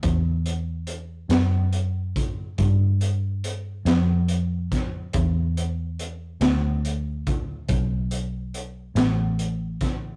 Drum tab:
HH |xxxxxxxxxxxx|xxxxxxxxxxxx|
SD |---o-----o-o|---o-----o-o|
BD |o----oo----o|o----oo----o|